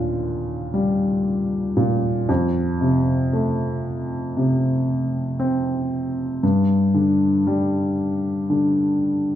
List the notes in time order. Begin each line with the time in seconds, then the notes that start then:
Already playing: D#2 A#2 D3
0.74 G3
1.77 A#2
2.29 F2
2.81 C3
3.33 A3
4.37 C3
5.39 C4
6.43 G2
6.94 D3
7.47 G3
8.50 D3